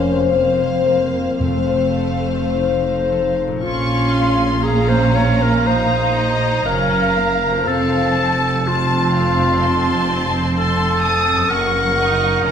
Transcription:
0.00 1.40 F1 soft
0.00 1.40 F2 soft
0.00 1.41 F3 soft
0.00 0.28 A#3 soft
0.00 0.94 A#3 soft
0.00 1.69 C4 soft
0.00 0.27 C#4 medium
0.00 0.84 A#4 soft
0.00 0.30 C5 soft
0.00 0.56 C5 soft
0.00 0.28 F5 soft
0.29 1.39 A#3 soft
0.29 3.11 C4 soft
0.29 1.39 C5 soft
0.29 2.55 F5 soft
0.29 1.39 F5 soft
0.57 2.26 C5 soft
0.86 1.46 A#4 soft
1.13 3.38 F4 soft
1.40 3.38 F1 soft
1.40 3.06 F2 soft
1.40 3.39 F2 soft
1.40 5.32 F3 soft
1.40 3.43 A3 soft
1.40 3.39 C5 soft
1.40 3.40 F5 soft
1.71 3.67 C4 soft
1.99 3.11 A4 soft
2.27 2.83 C5 soft
2.53 3.65 D#4 medium
2.53 6.46 F5 soft
2.84 3.68 C5 soft
3.12 3.68 A4 soft
3.39 3.59 F4 soft
3.47 7.37 A#2 soft
3.52 7.42 A#3 soft
3.56 7.46 C#4 soft
3.61 6.63 A#1 medium
3.61 6.63 A#2 medium
3.61 7.51 F4 soft
3.61 4.65 F4 medium
3.61 4.10 C#6 medium
3.65 4.61 C#4 medium
3.65 4.61 F5 medium
4.13 4.64 C6 soft
4.64 5.64 C#4 medium
4.64 4.90 G#4 medium
4.64 5.64 F5 medium
4.64 7.66 A#5 medium
4.89 5.17 C5 medium
5.16 5.43 C#5 medium
5.42 5.68 A#4 medium
5.66 6.67 D#4 medium
5.66 6.65 C5 medium
5.66 6.16 F5 soft
6.17 6.67 D#5 medium
6.66 7.64 F#1 soft
6.66 7.64 F#2 soft
6.66 7.16 C#4 medium
6.66 7.63 A#4 medium
6.66 7.65 F5 medium
7.16 7.66 A#3 medium
7.48 11.38 F2 medium
7.53 11.43 C4 soft
7.57 11.47 F4 soft
7.62 11.50 F1 medium
7.62 8.65 C4 medium
7.62 11.52 A4 soft
7.66 11.51 F2 medium
7.66 8.69 A4 medium
7.66 8.15 F5 medium
7.66 8.64 A5 medium
8.14 8.65 A5 medium
8.65 11.46 C4 medium
8.65 10.32 F4 medium
8.65 9.61 A5 medium
8.65 9.15 A5 medium
9.15 9.62 F5 medium
9.62 10.56 A5 medium
9.62 10.55 C6 medium
10.56 11.52 A4 medium
10.56 11.49 A5 medium
10.56 11.02 C6 medium
11.02 11.49 D#6 medium
11.32 12.51 F#2 soft
11.36 12.51 A#3 soft
11.41 12.51 C#4 soft
11.46 11.96 A#3 medium
11.46 12.51 A#4 soft
11.50 12.43 F#1 medium
11.50 12.42 F#2 medium
11.50 12.51 A#4 medium
11.50 12.44 F#5 medium
11.50 12.44 C#6 medium
11.97 12.43 D#4 medium
12.44 12.51 F1 medium
12.44 12.51 F2 medium
12.44 12.51 C#4 medium
12.44 12.51 F#5 medium
12.44 12.51 A#5 medium

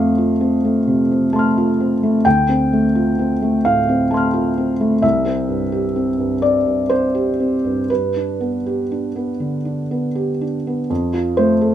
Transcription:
0.00 2.21 F2 soft
0.00 0.32 A3 soft
0.00 0.41 C4 soft
0.00 2.24 F5 medium
0.18 0.55 F4 soft
0.41 0.78 C4 soft
0.65 1.01 A3 soft
0.87 1.24 C3 soft
1.12 1.47 C4 soft
1.33 1.69 A3 soft
1.33 2.21 A5 soft
1.33 2.22 C6 soft
1.39 2.24 F6 soft
1.57 1.93 F4 soft
1.80 2.16 C4 soft
2.03 2.25 A3 soft
2.25 4.99 D2 soft
2.25 3.64 G5 medium
2.49 2.86 C4 soft
2.73 3.09 A3 soft
2.95 3.32 F4 soft
3.19 3.56 C4 soft
3.42 3.79 A3 soft
3.65 4.02 A2 soft
3.65 4.11 F5 medium
3.89 4.25 C4 soft
4.11 4.48 A3 soft
4.11 4.99 A5 soft
4.11 5.01 C6 soft
4.17 5.02 F6 soft
4.34 4.71 F4 soft
4.58 4.94 C4 soft
4.80 5.03 A3 soft
5.02 7.85 C2 medium
5.02 6.42 E5 medium
5.25 5.62 C4 soft
5.48 5.85 G2 soft
5.72 6.09 G4 soft
5.96 6.33 C4 soft
6.18 6.56 G2 soft
6.42 6.80 C4 soft
6.42 6.90 D5 medium
6.66 7.05 G2 soft
6.89 7.29 C4 soft
6.89 7.89 C5 medium
7.15 7.54 G4 soft
7.40 7.80 C4 soft
7.65 7.90 G2 soft
7.90 10.87 G2 soft
7.90 10.41 B4 medium
8.16 8.56 D4 soft
8.40 8.81 B3 soft
8.66 9.06 G4 soft
8.91 9.31 D4 soft
9.16 9.55 B3 soft
9.40 9.80 D3 soft
9.65 10.05 D4 soft
9.91 10.31 B3 soft
10.15 10.56 G4 soft
10.41 10.81 D4 soft
10.67 10.91 B3 soft
10.90 11.75 F2 soft
11.14 11.52 F4 soft
11.37 11.75 A3 soft
11.37 11.75 C5 medium
11.61 11.75 A4 soft

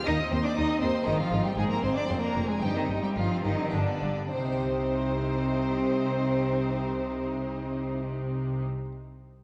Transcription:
0.00 1.00 C4 medium
0.00 1.01 D#4 medium
0.00 1.02 G4 medium
0.07 0.15 D#2 medium
0.07 0.29 D#2 medium
0.07 0.15 D#4 loud
0.07 0.18 D#4 medium
0.07 0.31 D#5 medium
0.07 0.32 D#6 loud
0.20 0.32 C4 medium
0.31 0.54 D#2 medium
0.31 0.40 D#2 medium
0.31 0.36 C4 medium
0.31 0.44 D#4 medium
0.31 0.36 C5 medium
0.31 0.44 C6 loud
0.44 0.57 C4 medium
0.44 0.49 D4 medium
0.44 0.56 D5 medium
0.44 0.57 D6 loud
0.56 0.79 D#2 medium
0.56 0.64 D#2 medium
0.56 0.65 D#2 medium
0.56 0.80 D#4 medium
0.56 0.68 D#4 medium
0.56 0.81 D#5 loud
0.56 0.82 D#6 loud
0.69 0.82 C4 medium
0.80 0.90 D#2 medium
0.80 1.04 D#2 medium
0.80 0.88 C4 medium
0.80 0.94 D#4 medium
0.80 1.06 C5 medium
0.80 1.06 C6 loud
0.94 1.07 C4 medium
1.01 2.03 G#3 medium
1.01 2.03 C4 medium
1.01 2.04 D#4 medium
1.06 1.15 G#1 medium
1.06 1.15 G#2 medium
1.06 1.30 G#2 medium
1.06 1.20 D#3 medium
1.06 1.18 D#4 medium
1.06 1.19 D#4 medium
1.06 2.05 G#4 medium
1.06 1.19 D#5 loud
1.19 1.44 F3 medium
1.19 1.32 C4 medium
1.19 1.44 F4 medium
1.19 1.44 F5 medium
1.31 1.40 G#1 medium
1.31 1.40 G#2 medium
1.31 1.55 G#2 medium
1.31 1.44 D#4 medium
1.45 1.56 G3 medium
1.45 1.57 C4 medium
1.45 1.57 G4 medium
1.45 1.58 G5 medium
1.57 1.65 G#1 medium
1.57 1.65 G#2 medium
1.57 1.80 G#2 medium
1.57 1.70 G#3 medium
1.57 1.69 D#4 medium
1.57 1.70 G#4 medium
1.57 1.63 G#5 loud
1.70 1.84 A#3 medium
1.70 1.83 C4 medium
1.70 1.83 A#4 medium
1.70 1.83 A#5 medium
1.83 1.91 G#1 medium
1.83 2.06 G#2 medium
1.83 1.91 G#2 medium
1.83 1.97 C4 medium
1.83 1.96 D#4 medium
1.83 1.88 C5 medium
1.83 1.96 C6 loud
1.95 2.07 C4 medium
1.95 2.08 D4 medium
1.95 2.08 D5 medium
1.95 2.08 D6 loud
2.04 2.56 C4 medium
2.04 2.21 C4 medium
2.04 2.58 D4 medium
2.04 2.59 G#4 medium
2.04 2.13 C6 loud
2.09 2.17 F1 medium
2.09 2.32 F2 medium
2.09 2.17 F2 medium
2.09 2.21 C4 medium
2.09 2.22 C5 medium
2.21 2.50 A#3 medium
2.21 2.35 D4 medium
2.21 2.48 A#4 medium
2.21 2.48 A#5 medium
2.35 2.43 F1 medium
2.35 2.59 F2 medium
2.35 2.44 F2 medium
2.35 2.49 C4 medium
2.48 2.63 G#3 medium
2.48 2.62 D4 medium
2.48 2.54 G#4 medium
2.48 2.62 G#5 loud
2.57 3.67 C4 medium
2.57 3.68 D#4 medium
2.57 3.69 G4 medium
2.57 2.75 G5 loud
2.61 2.70 G1 medium
2.61 2.69 G2 medium
2.61 2.86 G2 medium
2.61 2.75 G3 medium
2.61 2.74 D#4 medium
2.61 2.75 G4 medium
2.74 2.84 D#3 medium
2.74 2.89 C4 medium
2.74 3.02 D#4 medium
2.74 3.02 D#5 loud
2.88 2.96 G1 medium
2.88 2.97 G2 medium
2.88 3.14 G2 medium
2.88 3.02 D#4 medium
3.02 3.18 G3 medium
3.02 3.16 C4 medium
3.02 3.16 G4 medium
3.02 3.08 G5 medium
3.16 3.24 G1 medium
3.16 3.24 G2 medium
3.16 3.41 G2 medium
3.16 3.46 F3 medium
3.16 3.29 D#4 medium
3.16 3.43 F4 medium
3.16 3.43 F5 medium
3.31 3.44 C4 medium
3.44 3.52 G1 medium
3.44 3.52 G2 medium
3.44 3.70 G2 medium
3.44 3.75 D#3 medium
3.44 3.72 D#4 medium
3.44 3.59 D#4 medium
3.44 3.72 D#5 medium
3.58 3.73 C4 medium
3.68 4.28 B3 medium
3.68 4.28 F4 soft
3.68 4.29 G4 medium
3.68 4.30 D5 medium
3.72 3.81 G1 medium
3.72 3.99 G2 medium
3.72 3.81 G2 medium
3.72 4.31 D3 medium
3.72 4.30 D4 medium
3.72 3.86 D4 medium
3.87 4.02 B3 medium
4.01 4.10 G1 medium
4.01 4.28 G2 medium
4.01 4.10 G2 medium
4.01 4.17 D4 medium
4.17 4.32 B3 medium
4.31 8.64 C2 medium
4.31 8.64 C3 medium
4.31 8.64 C4 medium
4.31 8.64 D#4 medium
4.31 8.64 C5 medium
4.31 8.64 C5 loud
4.38 8.71 C4 medium
4.44 8.78 D#4 medium
4.52 8.85 G4 medium
4.59 8.92 D#5 medium

